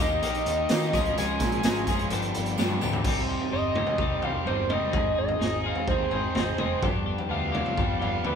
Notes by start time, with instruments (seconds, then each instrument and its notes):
0.00 picked electric bass D#2, overdriven electric guitar D#3, clean electric guitar A#3 D#4 G4, analog synth lead D#5, tambourine
0.22 picked electric bass A#1, overdriven electric guitar D#3, clean electric guitar A#3 D#4 G4, analog synth lead D#5, closed hi-hat, tambourine
0.34 closed hi-hat
0.46 picked electric bass D#2, closed hi-hat
0.69 overdriven electric guitar D#3, picked electric bass D#3, clean electric guitar A#3 D#4 G4, snare, closed hi-hat, tambourine
0.82 closed hi-hat
0.92 picked electric bass C#2, overdriven electric guitar C#3 C#4 F4, clean electric guitar F3 G#3 D#4 G#4, kick, snare, closed hi-hat, tambourine
1.05 closed hi-hat
1.16 picked electric bass C#2, overdriven electric guitar C#3 C#4 F4, clean electric guitar F3 G#3 D#4 G#4, analog synth lead G#5, closed hi-hat, tambourine
1.40 picked electric bass A#2, kick, snare, closed hi-hat, tambourine
1.52 closed hi-hat
1.63 picked electric bass G#1, overdriven electric guitar C#3 C#4 F4, clean electric guitar F3 G#3 D#4 G#4, snare, closed hi-hat, tambourine
1.76 closed hi-hat
1.87 picked electric bass F#1, overdriven electric guitar C#3 C#4 F4, clean electric guitar F3 G#3 D#4 G#4, kick, closed hi-hat, tambourine
1.99 closed hi-hat
2.10 picked electric bass G1, overdriven electric guitar G2 D3 G3, clean electric guitar F3 B3 D4 G4, closed hi-hat, tambourine
2.22 closed hi-hat
2.34 picked electric bass G1, closed hi-hat, tambourine
2.46 closed hi-hat
2.58 overdriven electric guitar G2 D3 G3, picked electric bass G2, clean electric guitar F3 B3 D4 G4, snare, tambourine
2.69 high tom
2.80 picked electric bass D2, overdriven electric guitar G2 D3 G3, clean electric guitar F3 B3 D4 G4, mid tom, tambourine
2.93 floor tom
3.04 picked electric bass C2, overdriven electric guitar C3, clean electric guitar G3 C4 D#4 G4, kick, floor tom, crash
3.28 clean electric guitar C4 D#4 G4
3.40 floor tom
3.51 picked electric bass G1, clean electric guitar G3 C4 D#4 G4, analog synth lead D#5
3.75 overdriven electric guitar D#3, clean electric guitar G3 C4 D#4 G4, mid tom
3.87 floor tom
3.98 picked electric bass C2, clean electric guitar G3 C4 D#4 G4, kick
4.22 picked electric bass C2, clean electric guitar C4 D#4 G4, analog synth lead F5, floor tom
4.45 picked electric bass G1, overdriven electric guitar D#3, clean electric guitar G3 C4 D#4 G4, analog synth lead C5, floor tom
4.70 clean electric guitar G3 C4 D#4 G4, analog synth lead D#5, mid tom
4.91 picked electric bass G#1, overdriven electric guitar G#2, clean electric guitar C4 D#4 G#4, kick, floor tom
5.15 picked electric bass G#1, clean electric guitar D#4 G#4, analog synth lead D#5
5.28 floor tom
5.39 picked electric bass G#1, clean electric guitar C4 D#4 G#4, snare
5.64 overdriven electric guitar G#3, clean electric guitar C4 D#4 G#4, analog synth lead F5
5.75 floor tom
5.88 picked electric bass D#2, clean electric guitar C4 D#4 G#4, analog synth lead C5, kick
6.11 picked electric bass G#1, clean electric guitar D#4 G#4, floor tom
6.35 picked electric bass G#1, overdriven electric guitar G#3, clean electric guitar C4 D#4 G#4, snare, floor tom, mid tom
6.58 picked electric bass F1, clean electric guitar C4 D#4 G#4, mid tom
6.82 picked electric bass G1, overdriven electric guitar G2, clean electric guitar F3 B3 D4 G4, kick, floor tom
7.06 clean electric guitar B3 D4 G4
7.18 floor tom
7.28 picked electric bass D2, clean electric guitar F3 B3 D4 G4, analog synth lead F5
7.52 clean electric guitar F3 B3 D4 G4, mid tom
7.66 floor tom
7.76 picked electric bass G1, clean electric guitar F3 B3 D4 G4, overdriven electric guitar G3, kick
7.99 picked electric bass G1, clean electric guitar B3 D4 G4, analog synth lead F5, floor tom
8.24 picked electric bass D2, clean electric guitar F3 B3 D4 G4, analog synth lead B4, floor tom